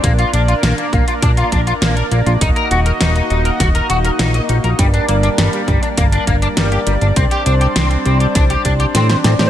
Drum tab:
HH |xxxxxxxxxxxxxxxx|xxxxxxxxxxxxxxxx|xxxxxxxxxxxxxxxx|xxxxxxxxxxxxxxxx|
SD |----o-------o---|----o---o---o---|----o-------o---|----o---o---oooo|
BD |o-----o-o-o-----|o-------o-------|o-----o-o-o-----|o-------o-o-----|